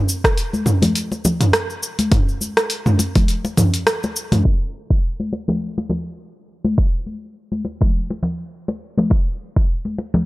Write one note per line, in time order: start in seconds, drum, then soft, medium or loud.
0.09 cabasa medium
0.24 kick medium
0.24 cross-stick medium
0.24 open hi-hat soft
0.24 cabasa soft
0.37 open hi-hat medium
0.37 cabasa soft
0.53 high conga medium
0.53 cabasa soft
0.66 mid tom medium
0.66 muted conga medium
0.66 cabasa medium
0.82 open hi-hat soft
0.82 high conga medium
0.82 low conga medium
0.82 cabasa soft
0.95 open hi-hat medium
0.95 cabasa soft
1.12 muted conga medium
1.12 cabasa soft
1.25 muted conga medium
1.25 low conga medium
1.25 cabasa medium
1.41 mid tom medium
1.41 open hi-hat soft
1.41 cabasa soft
1.53 cross-stick medium
1.53 open hi-hat medium
1.53 cabasa soft
1.70 cabasa soft
1.83 cabasa medium
1.99 open hi-hat soft
1.99 high conga medium
1.99 cabasa soft
2.12 kick loud
2.12 mid tom medium
2.12 open hi-hat medium
2.12 muted conga medium
2.12 cabasa soft
2.29 cabasa soft
2.41 high conga soft
2.41 cabasa medium
2.57 cross-stick medium
2.57 open hi-hat soft
2.57 cabasa soft
2.70 open hi-hat medium
2.70 cabasa soft
2.86 mid tom medium
2.86 high conga medium
2.86 cabasa soft
2.99 open hi-hat soft
2.99 muted conga medium
2.99 cabasa medium
3.15 kick loud
3.15 open hi-hat soft
3.15 high conga medium
3.15 low conga medium
3.15 cabasa soft
3.28 open hi-hat medium
3.28 cabasa soft
3.45 muted conga medium
3.45 cabasa soft
3.57 mid tom medium
3.57 open hi-hat soft
3.57 low conga medium
3.57 cabasa medium
3.74 open hi-hat soft
3.74 cabasa soft
3.87 cross-stick medium
3.87 open hi-hat medium
3.87 cabasa soft
4.03 muted conga medium
4.03 cabasa soft
4.16 cabasa medium
4.32 mid tom medium
4.32 open hi-hat soft
4.32 high conga medium
4.32 low conga medium
4.32 cabasa soft
4.45 kick loud
4.45 muted conga medium
4.90 kick medium
5.20 high conga medium
5.33 muted conga medium
5.48 high conga medium
5.48 low conga medium
5.78 muted conga medium
5.89 muted conga medium
5.89 low conga medium
6.65 high conga medium
6.78 kick loud
6.78 muted conga medium
7.06 high conga soft
7.52 high conga medium
7.65 muted conga medium
7.81 kick loud
7.81 high conga medium
7.81 low conga medium
8.10 muted conga medium
8.23 low conga medium
8.68 muted conga medium
8.98 high conga medium
8.98 low conga medium
9.10 kick loud
9.10 muted conga medium
9.56 kick loud
9.85 high conga medium
9.98 muted conga medium
10.14 high conga medium
10.14 low conga medium